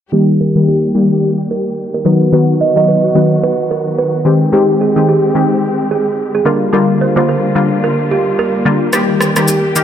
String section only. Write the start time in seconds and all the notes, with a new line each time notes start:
0.12 D#3 G3 A#3 G4
2.05 F#3 B3 F#4
4.25 G#3 C4 G4
6.45 D3 G3 A#3 F4
8.93 D#3 G4